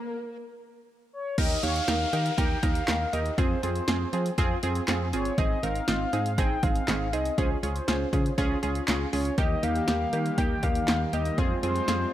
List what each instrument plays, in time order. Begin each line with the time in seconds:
Already playing: soft synth lead A#4, swell
1.13 soft synth lead C#5
1.38 fm bass D#2, analog polysynth D#4 G4 A#4, soft synth lead D#5, kick, closed hi-hat, crash, downlifter
1.63 fm bass D#2, analog polysynth D#4 G4 C#5, soft synth lead F5, closed hi-hat
1.76 closed hi-hat
1.88 fm bass D#2, analog polysynth D#4 G4 A#4, snare, closed hi-hat
2.13 fm bass D#3, analog polysynth D#4 G4 A#4, closed hi-hat
2.26 closed hi-hat
2.38 fm bass D#2, analog polysynth D#4 G4 A#4, soft synth lead G5, kick, closed hi-hat
2.63 fm bass D#2, analog polysynth D#4 G4 A#4, soft synth lead F5, kick, closed hi-hat
2.75 closed hi-hat
2.88 fm bass D#2, analog polysynth D#4 G4 A#4, snare, clap, closed hi-hat
3.13 fm bass D#2, analog polysynth D#4 G4 A#4, soft synth lead D#5, closed hi-hat
3.26 closed hi-hat
3.38 fm bass F2, analog polysynth C4 F4 G#4, soft synth lead C5, kick, closed hi-hat
3.63 fm bass F2, analog polysynth C4 F4 G#4, soft synth lead C5, closed hi-hat
3.76 closed hi-hat
3.88 fm bass F2, analog polysynth C4 F4 G#4, snare, closed hi-hat
4.13 fm bass F3, analog polysynth C4 F4 G#4, closed hi-hat
4.26 closed hi-hat
4.38 fm bass F2, analog polysynth C4 F4 G#4, kick, closed hi-hat
4.63 fm bass F2, analog polysynth C4 F4 G#4, closed hi-hat
4.75 closed hi-hat
4.88 fm bass F2, analog polysynth C4 F4 G#4, snare, clap, closed hi-hat
5.13 fm bass G1, analog polysynth C4 F4 G#4, soft synth lead C#5, closed hi-hat
5.25 closed hi-hat
5.38 fm bass G#1, analog polysynth C4 D#4 G#4, soft synth lead D#5, kick, closed hi-hat
5.63 fm bass G#1, analog polysynth C4 D#4 A#4, soft synth lead F5, closed hi-hat
5.75 closed hi-hat
5.88 fm bass G#1, analog polysynth C4 D#4 F4, snare, closed hi-hat
6.13 fm bass G#2, analog polysynth C4 D#4 G#4, closed hi-hat
6.26 closed hi-hat
6.38 fm bass G#1, analog polysynth C4 D#4 G#4, soft synth lead G5, kick, closed hi-hat
6.63 fm bass G#1, analog polysynth C4 D#4 G#4, soft synth lead F5, kick, closed hi-hat
6.75 closed hi-hat
6.88 fm bass G#1, analog polysynth C4 D#4 G#4, snare, clap, closed hi-hat
7.13 fm bass C2, analog polysynth C4 D#4 G#4, soft synth lead D#5, closed hi-hat
7.25 closed hi-hat
7.38 fm bass C#2, analog polysynth C#4 F4 G#4, soft synth lead C5, kick, closed hi-hat
7.63 fm bass C#2, analog polysynth C#4 F4 G#4, soft synth lead C5, closed hi-hat
7.76 closed hi-hat
7.88 fm bass C#2, analog polysynth C#4 F4 G#4, snare, closed hi-hat
8.13 fm bass C#3, analog polysynth C#4 F4 G#4, kick, closed hi-hat
8.26 closed hi-hat
8.38 fm bass C#2, analog polysynth C#4 F4 G#4, kick, closed hi-hat
8.63 fm bass C#2, analog polysynth C#4 F4 G#4, closed hi-hat
8.75 closed hi-hat
8.88 fm bass C#2, analog polysynth C#4 F4 G#4, snare, clap, closed hi-hat
9.13 fm bass C#2, analog polysynth C#4 F4 G#4, soft synth lead C#5, open hi-hat
9.25 closed hi-hat
9.38 fm bass D#2, analog synth pad D#3 G3 A#3 G4, analog polysynth A#3 D#4 G4, soft synth lead D#5, kick, closed hi-hat
9.63 fm bass D#2, analog polysynth A#3 D#4 G4, soft synth lead F5, closed hi-hat
9.76 closed hi-hat
9.88 fm bass D#2, analog polysynth A#3 D#4 G4, snare, closed hi-hat
10.13 fm bass D#3, analog polysynth A#3 D#4 G4, closed hi-hat
10.26 closed hi-hat
10.38 fm bass D#2, analog polysynth A#3 D#4 G4, soft synth lead G5, kick, closed hi-hat
10.63 fm bass D#2, analog polysynth A#3 D#4 G4, soft synth lead F5, kick, closed hi-hat
10.75 closed hi-hat
10.88 fm bass D#2, analog polysynth A#3 D#4 G4, snare, clap, closed hi-hat
11.13 fm bass D#2, analog polysynth A#3 D#4 G4, soft synth lead D#5, closed hi-hat
11.25 closed hi-hat
11.38 fm bass F2, analog synth pad G#3 C4 F4, analog polysynth C4 F4 G#4, soft synth lead C5, kick, closed hi-hat
11.63 fm bass F2, analog polysynth C4 F4 G#4, soft synth lead C5, closed hi-hat
11.76 closed hi-hat
11.88 fm bass F2, analog polysynth C4 F4 G#4, snare, closed hi-hat